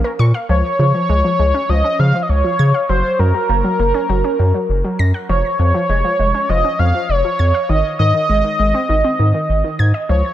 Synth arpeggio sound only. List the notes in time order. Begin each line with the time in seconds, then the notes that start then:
0.04 A#4
0.19 C#6
0.34 F5
0.49 F3
0.79 F3
0.94 F3
1.09 G#3
1.24 F3
1.39 G#3
1.54 C#4
1.69 F3
1.84 C#4
1.99 F3
2.14 F3
2.44 F3
2.59 G#6
2.74 F5
2.89 F#3
3.19 F#3
3.34 F#3
3.49 A#3
3.64 F#3
3.79 A#3
3.94 C#4
4.09 F#3
4.24 C#4
4.39 F#3
4.54 F#3
4.84 F#3
4.99 A#6
5.14 F#5
5.29 F3
5.59 F3
5.74 F3
5.89 G#3
6.04 F3
6.19 G#3
6.34 C#4
6.49 F3
6.64 C#4
6.79 F3
6.94 F3
7.24 F3
7.39 G#6
7.54 F5
7.69 D#3
7.99 D#3
8.14 D#3
8.29 G#3
8.44 D#3
8.59 G#3
8.74 C4
8.89 D#3
9.04 C4
9.19 D#3
9.34 D#3
9.64 D#3
9.79 G#6
9.94 D#5
10.09 F3